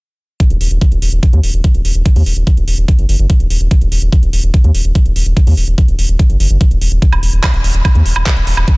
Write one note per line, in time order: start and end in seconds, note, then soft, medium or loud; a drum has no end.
0.40 kick loud
0.40 closed hi-hat medium
0.50 0.57 D#1 medium
0.50 closed hi-hat soft
0.61 0.67 D#1 medium
0.61 open hi-hat loud
0.71 0.78 D#1 medium
0.81 kick loud
0.81 closed hi-hat loud
0.92 0.98 D#1 medium
0.92 closed hi-hat soft
1.02 1.09 D#1 loud
1.02 open hi-hat loud
1.12 1.19 D#1 medium
1.12 closed hi-hat soft
1.23 kick loud
1.23 closed hi-hat loud
1.33 1.40 D#2 medium
1.33 closed hi-hat soft
1.43 1.50 D#1 medium
1.43 open hi-hat loud
1.54 1.60 D#1 medium
1.54 closed hi-hat soft
1.64 kick loud
1.64 closed hi-hat medium
1.75 1.81 D#1 medium
1.75 closed hi-hat soft
1.85 1.91 D#1 loud
1.85 open hi-hat loud
1.95 2.02 D#1 medium
1.95 closed hi-hat soft
2.06 kick loud
2.06 closed hi-hat medium
2.16 2.22 D#2 medium
2.16 open hi-hat medium
2.26 2.33 D#1 loud
2.26 open hi-hat loud
2.37 2.43 D#1 medium
2.37 closed hi-hat soft
2.47 kick loud
2.47 closed hi-hat medium
2.57 2.64 D#1 medium
2.57 closed hi-hat soft
2.68 2.74 D#1 loud
2.68 open hi-hat loud
2.78 2.84 D#1 medium
2.78 closed hi-hat soft
2.88 kick loud
2.88 closed hi-hat medium
2.99 3.05 F#1 medium
2.99 closed hi-hat soft
3.09 3.15 F#1 loud
3.09 open hi-hat loud
3.19 3.26 F#1 medium
3.19 closed hi-hat soft
3.30 kick loud
3.30 closed hi-hat medium
3.40 3.47 D#1 medium
3.40 closed hi-hat soft
3.50 3.57 D#1 loud
3.50 open hi-hat loud
3.61 3.67 D#1 medium
3.61 closed hi-hat soft
3.71 kick loud
3.71 closed hi-hat medium
3.81 3.88 D#1 medium
3.81 closed hi-hat soft
3.92 3.98 D#1 loud
3.92 open hi-hat loud
4.02 4.09 D#1 medium
4.02 closed hi-hat soft
4.12 kick loud
4.12 closed hi-hat medium
4.23 4.29 D#1 medium
4.23 closed hi-hat soft
4.33 4.40 D#1 loud
4.33 open hi-hat loud
4.44 4.50 D#1 medium
4.44 closed hi-hat soft
4.54 kick loud
4.54 closed hi-hat medium
4.64 4.71 D#2 medium
4.64 closed hi-hat soft
4.75 4.81 D#1 medium
4.75 open hi-hat loud
4.85 4.91 D#1 medium
4.85 closed hi-hat soft
4.95 kick loud
4.95 closed hi-hat medium
5.06 5.12 D#1 medium
5.06 closed hi-hat soft
5.16 5.22 D#1 loud
5.16 open hi-hat loud
5.26 5.33 D#1 loud
5.26 closed hi-hat soft
5.37 kick loud
5.37 closed hi-hat medium
5.47 5.53 D#2 medium
5.47 open hi-hat medium
5.57 5.64 D#1 loud
5.57 open hi-hat loud
5.68 5.74 D#1 medium
5.68 closed hi-hat soft
5.78 kick loud
5.78 closed hi-hat medium
5.88 5.95 D#1 medium
5.88 closed hi-hat soft
5.99 6.05 D#1 loud
5.99 open hi-hat loud
6.09 6.16 D#1 loud
6.09 closed hi-hat soft
6.19 kick loud
6.19 closed hi-hat medium
6.30 6.36 F#1 medium
6.30 closed hi-hat soft
6.40 6.47 F#1 loud
6.40 open hi-hat loud
6.50 6.57 F#1 medium
6.50 closed hi-hat soft
6.61 kick loud
6.61 closed hi-hat medium
6.71 6.78 D#1 medium
6.71 closed hi-hat soft
6.81 6.88 D#1 loud
6.81 open hi-hat loud
6.92 6.98 D#1 medium
6.92 closed hi-hat soft
7.02 kick loud
7.02 closed hi-hat medium
7.12 7.19 D#1 medium
7.12 closed hi-hat soft
7.12 high woodblock soft
7.23 7.29 D#1 loud
7.23 open hi-hat loud
7.33 7.40 D#1 medium
7.33 closed hi-hat soft
7.44 kick loud
7.44 clap loud
7.44 closed hi-hat medium
7.44 high woodblock medium
7.54 7.60 D#1 medium
7.54 closed hi-hat soft
7.64 7.71 D#1 loud
7.64 open hi-hat loud
7.75 7.81 D#1 medium
7.85 kick loud
7.85 closed hi-hat medium
7.85 high woodblock soft
7.95 8.02 D#2 medium
7.95 closed hi-hat soft
8.06 8.12 D#1 medium
8.06 open hi-hat loud
8.16 8.22 D#1 medium
8.16 high woodblock medium
8.26 kick loud
8.26 clap loud
8.26 closed hi-hat medium
8.37 8.43 D#1 medium
8.37 closed hi-hat soft
8.47 8.53 D#1 loud
8.47 open hi-hat loud
8.57 8.64 D#1 medium
8.57 closed hi-hat soft
8.57 high woodblock soft
8.68 kick loud
8.68 closed hi-hat medium